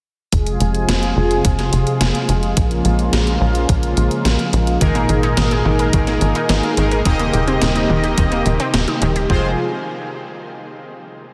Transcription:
0.32 analog synth bass F1, analog synth pad C3 F3 G#3 F4 G#4, kick, closed hi-hat
0.47 closed hi-hat
0.60 analog synth bass F1, closed hi-hat
0.75 closed hi-hat
0.89 analog synth bass F1, snare, closed hi-hat
1.03 closed hi-hat
1.17 analog synth bass F1
1.31 closed hi-hat
1.45 analog synth bass F1, kick, closed hi-hat
1.59 snare, closed hi-hat
1.72 analog synth bass F1, closed hi-hat
1.87 closed hi-hat
2.01 analog synth bass F1, snare, closed hi-hat
2.15 closed hi-hat
2.29 analog synth bass F1, closed hi-hat
2.43 closed hi-hat
2.57 analog synth bass A#1, analog synth pad C#3 F3 A#3 F4, kick, closed hi-hat
2.71 closed hi-hat
2.85 analog synth bass A#1, closed hi-hat
2.99 closed hi-hat
3.13 analog synth bass A#1, snare, closed hi-hat
3.27 closed hi-hat
3.41 analog synth bass A#1
3.55 closed hi-hat
3.69 analog synth bass A#1, kick, closed hi-hat
3.83 closed hi-hat
3.97 analog synth bass A#1, closed hi-hat
4.11 closed hi-hat
4.25 analog synth bass A#1, snare, closed hi-hat
4.39 closed hi-hat
4.53 analog synth bass A#1, closed hi-hat
4.67 closed hi-hat
4.81 analog synth bass G#1, analog synth pad A#2 D#3 D#4 G#4, synth arpeggio sound D#3, analog polysynth G#3 A#3 D#4 G#4 A#4, kick, closed hi-hat
4.95 synth arpeggio sound A#3, closed hi-hat
5.09 analog synth bass G#1, synth arpeggio sound D#3, closed hi-hat
5.23 synth arpeggio sound D#4, closed hi-hat
5.37 analog synth bass G#1, synth arpeggio sound D#3, snare, closed hi-hat
5.51 synth arpeggio sound G#4, closed hi-hat
5.65 analog synth bass G#1, synth arpeggio sound D#3
5.79 synth arpeggio sound A#4, closed hi-hat
5.93 analog synth bass G#1, synth arpeggio sound D#3, kick, closed hi-hat
6.07 synth arpeggio sound A#3, snare, closed hi-hat
6.21 analog synth bass G#1, synth arpeggio sound D#3, closed hi-hat
6.35 synth arpeggio sound D#4, closed hi-hat
6.49 analog synth bass G#1, synth arpeggio sound D#3, snare, closed hi-hat
6.63 synth arpeggio sound G#4, closed hi-hat
6.77 analog synth bass G#1, synth arpeggio sound D#3, analog polysynth G#3 A#3 D#4 G#4 A#4, closed hi-hat
6.91 synth arpeggio sound A#4, closed hi-hat
7.05 analog synth bass D#1, analog synth pad C3 G3 A#3 D#4 G4, synth arpeggio sound D#3, analog polysynth A#3 C4 D#4 G4 D#5, kick, closed hi-hat
7.19 synth arpeggio sound A#3, closed hi-hat
7.34 analog synth bass D#1, synth arpeggio sound D#3, closed hi-hat
7.48 synth arpeggio sound C4, closed hi-hat
7.62 analog synth bass D#1, synth arpeggio sound D#3, snare, closed hi-hat
7.76 synth arpeggio sound D#4, closed hi-hat
7.90 analog synth bass D#1, synth arpeggio sound D#3
8.04 synth arpeggio sound G4, closed hi-hat
8.18 analog synth bass D#1, synth arpeggio sound D#3, kick, closed hi-hat
8.32 synth arpeggio sound A#3, closed hi-hat
8.46 analog synth bass D#1, synth arpeggio sound D#3, closed hi-hat
8.60 synth arpeggio sound C4, closed hi-hat
8.74 analog synth bass D#1, synth arpeggio sound D#3, snare, closed hi-hat
8.88 synth arpeggio sound D#4, closed hi-hat
9.02 analog synth bass D#1, synth arpeggio sound D#3, closed hi-hat
9.16 synth arpeggio sound G4, closed hi-hat
9.30 analog synth bass F1, analog synth pad C3 F3 G#3 F4 G#4, synth arpeggio sound F3, analog polysynth G#3 C4 F4 G#4 C5, kick

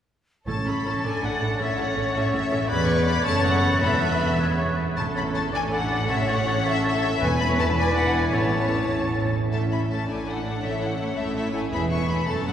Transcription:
0.47 double bass section A1, timpani A2, cello section A2, french horn section A3 C#4, viola section C#4 A4, violin section A4 A5, oboe C#5, flute A6
0.66 double bass section A1, cello section A2, viola section C#4 A4, violin section B5
0.85 double bass section A1, cello section A2, viola section C#4 A4, violin section A5
1.04 double bass section A1, cello section A2, viola section D4 A4, french horn section D4, oboe D5, violin section G#5
1.23 double bass section A1, cello section A2, viola section D4 A4, violin section F#5
1.41 double bass section A1, cello section A2, viola section D4 A4
1.60 double bass section A1, cello section A2, viola section C#4 A4, french horn section C#4, violin section C#5 E5, oboe C#5
1.78 double bass section A1, cello section A2, viola section C#4 A4, violin section F#5
1.96 double bass section A1, cello section A2, viola section C#4 A4
2.15 double bass section A1, cello section A2, viola section C#4 A4, violin section E5
2.33 double bass section A1, cello section A2, viola section C#4 A4, violin section E5
2.51 double bass section A1, cello section A2, viola section C#4 A4
2.68 double bass section E1, cello section E2, french horn section G#3 B3, viola section B3 G#4, oboe B4, violin section D5 B5, flute G#6
2.87 violin section C#6
3.06 violin section B5
3.24 double bass section F#1, cello section F#2, viola section A3 A4, french horn section A3 C#4, violin section C#5 A5, oboe C#5, flute A6
3.43 violin section F#5
3.81 double bass section E1, timpani E2, cello section E2, french horn section A3 B3, viola section B3 A4, oboe B4, violin section E5 B5
4.39 french horn section G#3 B3, viola section B3 G#4, oboe B4, flute G#6
4.58 oboe C#5
4.77 oboe B4
4.96 double bass section A1, timpani A2, cello section A2, french horn section A3 C#4, viola section C#4 A4, violin section A4 A5, oboe C#5, flute A6
5.15 oboe C#5, violin section B5, flute A6
5.33 oboe C#5, violin section A5, flute A6
5.53 viola section D4, french horn section D4, oboe D5, violin section G#5, flute A6
5.72 oboe D5, violin section F#5, flute A6
5.91 oboe D5, flute A6
6.09 timpani A2, french horn section C#4, viola section C#4, violin section C#5 E5, oboe C#5, flute A6
6.28 oboe C#5, violin section F#5, flute A6
6.46 oboe C#5, flute A6
6.65 violin section A4 E5, oboe C#5, flute A6
6.83 oboe C#5, violin section E5, flute A6
7.02 oboe C#5, flute A6
7.20 double bass section E1, timpani E2, cello section E2, viola section B3 B4, french horn section B3 E4, oboe B4, violin section B4 G#5, flute B6
7.40 violin section B5
7.49 oboe C#5
7.59 violin section A5
7.76 viola section D4, french horn section D4, oboe D5, violin section G#5, flute B6
7.96 violin section F#5
8.15 violin section G#5
8.34 double bass section A1, cello section A2, french horn section C#4, viola section C#4 A4, oboe C#5, violin section C#5 A5, flute A6
9.51 double bass section A1, cello section A2, viola section A3 C#4, french horn section C#4 E4, violin section A4 E5 A5
9.70 viola section A3 C#4, violin section A4 E5 B5
9.89 viola section A3 C#4, violin section A4 E5 A5
10.07 double bass section A1, cello section A2, viola section A3 D4, french horn section A3 D4, violin section A4 D5 G#5
10.25 viola section A3 D4, violin section A4 D5 F#5
10.44 viola section A3 D4, violin section A4 D5
10.61 double bass section A1, cello section A2, timpani A2, viola section A3 E4, french horn section C#4, violin section A4 C#5 E5
10.80 viola section A3 E4, violin section A4 C#5 F#5
10.98 viola section A3 E4, violin section A4 C#5
11.17 double bass section A1, cello section A2, viola section A3 E4, violin section A4 C#5 E5
11.35 viola section A3 E4, violin section A4 C#5 E5
11.53 viola section A3 E4, violin section A4 C#5 G#5
11.71 double bass section E1, cello section E2, timpani E2, french horn section G#3 B3, viola section B3 E4, violin section G#4 E5 B5
11.90 viola section B3 E4, violin section G#4 E5 C#6
12.09 viola section B3 E4, violin section G#4 E5 B5
12.27 double bass section F#1, cello section F#2, viola section A3 A4, french horn section A3 C#4, violin section A4 C#5 A5
12.47 viola section A3 A4, violin section A4 C#5 F#5

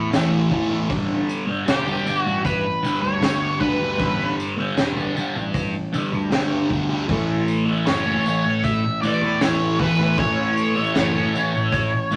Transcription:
Already playing: fingered electric bass E2
0.11 distorted electric guitar A2 E3 A3, snare, open hi-hat, tambourine
0.33 tambourine
0.50 fingered electric bass E2, distorted electric guitar A2 E3 A3, kick
0.69 distorted electric guitar E3 A3
0.88 fingered electric bass A1, distorted electric guitar G2 D3 G3, kick, open hi-hat
1.29 tambourine
1.46 distorted electric guitar D3 G3
1.66 fingered electric bass E1, distorted electric guitar G2 D3 G3, lead electric guitar G4, snare, open hi-hat, tambourine
1.85 distorted electric guitar D3 G3, tambourine
2.05 distorted electric guitar G2 D3 G3, tambourine
2.19 lead electric guitar F#4
2.26 fingered electric bass A1, muted distorted electric guitar stroke, tambourine
2.45 lead electric guitar B4, kick, open hi-hat, tambourine
2.83 distorted electric guitar G2 D3 G3, tambourine
3.02 fingered electric bass D2, lead electric guitar C#5, muted distorted electric guitar stroke, tambourine
3.21 distorted electric guitar G2 D3 G3, snare, open hi-hat, tambourine
3.44 tambourine
3.60 fingered electric bass D2, distorted electric guitar G2 D3 G3, lead electric guitar B4, kick, tambourine
3.79 distorted electric guitar D3 G3
3.98 fingered electric bass A1, distorted electric guitar G2 D3 G3, kick, open hi-hat
4.20 tambourine
4.40 tambourine
4.57 distorted electric guitar D3 G3
4.76 fingered electric bass E1, distorted electric guitar G2 D3 G3, snare, open hi-hat, tambourine
4.96 distorted electric guitar D3 G3, tambourine
5.15 distorted electric guitar G2 D3 G3, tambourine
5.36 fingered electric bass A1, muted distorted electric guitar stroke, tambourine
5.54 kick, open hi-hat, tambourine
5.92 distorted electric guitar G2 D3 G3, tambourine
6.12 fingered electric bass D2, muted distorted electric guitar stroke, tambourine
6.30 distorted electric guitar G2 D3 G3, snare, open hi-hat, tambourine
6.70 fingered electric bass D2, distorted electric guitar G2 D3 G3, kick, tambourine
6.89 distorted electric guitar D3 G3, tambourine
7.08 fingered electric bass A1, distorted electric guitar A2 E3 A3, kick, open hi-hat
7.48 tambourine
7.66 distorted electric guitar E3 A3
7.86 fingered electric bass F#1, distorted electric guitar A2 E3 A3, lead electric guitar C#5, snare, open hi-hat, tambourine
8.06 distorted electric guitar E3 A3, tambourine
8.25 distorted electric guitar A2 E3 A3, tambourine
8.45 fingered electric bass A1, muted distorted electric guitar stroke, tambourine
8.64 lead electric guitar E5, kick, open hi-hat, tambourine
9.02 distorted electric guitar A2 E3, lead electric guitar D5, tambourine
9.06 distorted electric guitar A3
9.23 fingered electric bass E2, muted distorted electric guitar stroke, tambourine
9.41 distorted electric guitar A2 E3 A3, lead electric guitar C#5, snare, open hi-hat, tambourine
9.61 tambourine
9.79 fingered electric bass E2, distorted electric guitar A2 E3 A3, lead electric guitar B4, kick, tambourine
9.99 distorted electric guitar E3 A3, snare
10.18 fingered electric bass A1, distorted electric guitar A2 E3 A3, lead electric guitar C#5, kick, open hi-hat
10.57 tambourine
10.76 distorted electric guitar E3 A3
10.94 fingered electric bass F#1, distorted electric guitar A2 E3 A3, snare, open hi-hat, tambourine
11.13 distorted electric guitar E3 A3, tambourine
11.33 distorted electric guitar A2 E3 A3, tambourine
11.54 fingered electric bass A1, muted distorted electric guitar stroke, tambourine
11.72 kick, open hi-hat, tambourine
12.11 distorted electric guitar A2 E3, tambourine

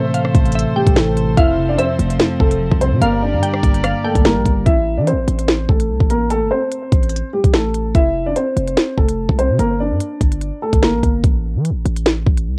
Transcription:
Already playing: tine electric piano A2 C3 E3 A3, string section A3 A4 C5, grand piano C4 C5, synth pluck E5
0.14 tine electric piano E3, synth pluck F5, closed hi-hat
0.25 cross-stick
0.35 808-style bass A1, tine electric piano A3, kick, closed hi-hat
0.46 closed hi-hat
0.52 synth pluck E5, closed hi-hat
0.59 closed hi-hat
0.76 grand piano G3 G4, tine electric piano A3, synth pluck G5
0.87 808-style bass A1, kick, closed hi-hat
0.96 tine electric piano E3, grand piano A3 A4, snare
1.17 tine electric piano C3, closed hi-hat
1.37 808-style bass F1, tine electric piano F2, string section F3 C4, grand piano E4 E5, synth pluck F5, kick, closed hi-hat
1.58 tine electric piano C3
1.69 grand piano D4 D5
1.78 tine electric piano F3, grand piano C4 C5, synth pluck E5, closed hi-hat
1.99 808-style bass F1, tine electric piano A3, closed hi-hat
2.10 closed hi-hat
2.20 snare, closed hi-hat
2.40 808-style bass F1, tine electric piano A3, grand piano A3 A4, kick
2.51 closed hi-hat
2.61 tine electric piano F3
2.72 808-style bass C2, kick
2.81 tine electric piano C3, grand piano C4 C5, closed hi-hat
2.92 808-style bass C3
3.02 808-style bass G1, tine electric piano G2, string section G3 G4 A#4 D5, grand piano A#3 A#4, synth pluck F5, closed hi-hat
3.22 tine electric piano D3, grand piano D4 D5
3.33 808-style bass G2
3.43 tine electric piano G3, synth pluck G5, closed hi-hat
3.54 cross-stick
3.63 808-style bass G1, tine electric piano A#3, kick, closed hi-hat
3.74 closed hi-hat
3.84 synth pluck F5, cross-stick, closed hi-hat
4.04 grand piano A3 A4, tine electric piano A#3, synth pluck G5
4.15 808-style bass G1, kick, closed hi-hat
4.25 tine electric piano G3, grand piano A#3 A#4, snare
4.36 808-style bass A#1
4.45 808-style bass G1, tine electric piano D3, kick, closed hi-hat
4.66 808-style bass A1, grand piano E4 E5, kick, closed hi-hat
4.97 808-style bass E3, grand piano D4 D5
5.07 grand piano C4 C5, closed hi-hat
5.13 808-style bass A1
5.28 808-style bass A1, closed hi-hat
5.39 closed hi-hat
5.48 snare, closed hi-hat
5.69 808-style bass A1, grand piano A3 A4, kick
5.80 closed hi-hat
5.89 808-style bass C2
6.00 808-style bass A1, kick
6.10 grand piano A#3 A#4, closed hi-hat
6.30 grand piano A3 A4, closed hi-hat
6.41 808-style bass G1
6.51 grand piano C4 C5
6.72 closed hi-hat
6.92 808-style bass A1, kick, closed hi-hat
7.03 closed hi-hat
7.09 closed hi-hat
7.16 closed hi-hat
7.33 grand piano G3 G4
7.44 808-style bass A1, kick, closed hi-hat
7.54 grand piano A3 A4, snare
7.74 closed hi-hat
7.95 808-style bass F1, grand piano E4 E5, kick, closed hi-hat
8.26 grand piano D4 D5
8.36 grand piano C4 C5, closed hi-hat
8.57 808-style bass F1, closed hi-hat
8.67 closed hi-hat
8.77 snare, closed hi-hat
8.98 808-style bass F1, grand piano A3 A4, kick
9.09 closed hi-hat
9.29 808-style bass C2, kick
9.39 grand piano C4 C5, closed hi-hat
9.50 808-style bass C3
9.59 808-style bass G1, grand piano A#3 A#4, closed hi-hat
9.80 grand piano D4 D5
9.91 808-style bass G2
10.00 closed hi-hat
10.21 808-style bass G1, kick, closed hi-hat
10.32 closed hi-hat
10.41 closed hi-hat
10.62 grand piano A3 A4
10.73 808-style bass G1, kick, closed hi-hat
10.83 grand piano A#3 A#4, snare
10.94 808-style bass A#1
11.03 808-style bass G1, kick, closed hi-hat
11.24 808-style bass A1, kick, closed hi-hat
11.55 808-style bass E3
11.65 closed hi-hat
11.70 808-style bass A1
11.85 808-style bass A1, closed hi-hat
11.96 closed hi-hat
12.06 snare, closed hi-hat
12.26 808-style bass A1, kick
12.37 closed hi-hat
12.47 808-style bass C2

